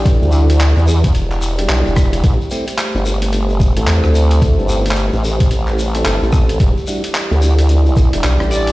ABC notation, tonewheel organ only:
X:1
M:4/4
L:1/16
Q:"Swing 16ths" 1/4=110
K:Em
V:1 name="Tonewheel organ"
[G,DEG]2 [G,DEF] z8 [G,DEG]4- [G,DEG] | z2 [A,CEG] z8 [A,CEA]4- [A,CEA]- | [A,CEA]2 [A,CEG] z8 [A,CEA]4- [A,CEA] | z2 [G,DEF] z8 [G,DEG]4- [G,DEG] |]